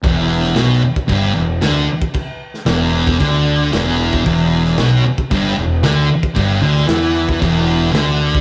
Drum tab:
CC |x---x---x---x---|x---x---x---x---|x---x---x---x---|x---x---x---x---|
SD |---oo-------o---|---oo-------o---|---oo-------o---|---oo-------o---|
BD |o------oo------o|o------oo------o|o------oo------o|o------oo------o|